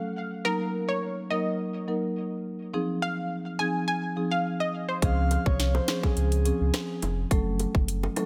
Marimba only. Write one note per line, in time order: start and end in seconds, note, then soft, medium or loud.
0.45 0.98 F#3 loud
0.45 0.98 A#3 medium
0.45 0.98 D#4 medium
0.45 0.98 A#4 loud
1.31 1.46 F#3 medium
1.31 1.46 A#3 medium
1.31 1.46 D#4 medium
1.31 1.46 A#4 medium
1.88 2.03 F#3 medium
1.88 2.03 A#3 medium
1.88 2.03 D#4 medium
1.88 2.03 A#4 medium
2.73 3.26 F3 loud
2.73 3.27 C4 medium
2.73 3.27 D#4 medium
2.73 3.27 G#4 loud
3.59 3.74 F3 medium
3.59 3.75 C4 medium
3.59 3.75 D#4 medium
3.59 3.75 G#4 medium
4.16 4.32 F3 medium
4.16 4.32 C4 medium
4.16 4.32 D#4 medium
4.16 4.32 G#4 medium
5.02 5.55 F3 medium
5.02 5.55 C4 medium
5.02 5.55 C#4 medium
5.02 5.55 G#4 loud
5.88 6.03 F3 medium
5.88 6.03 C4 medium
5.88 6.03 C#4 medium
5.88 6.03 G#4 medium
6.45 6.60 F3 medium
6.45 6.60 C4 medium
6.45 6.60 C#4 medium
6.45 6.61 G#4 medium
7.31 7.84 F#3 loud
7.31 7.84 A3 medium
7.31 7.84 C#4 medium
7.31 7.84 A4 loud
8.16 8.26 F#3 medium
8.16 8.26 A3 medium
8.16 8.26 C#4 medium
8.16 8.26 A4 medium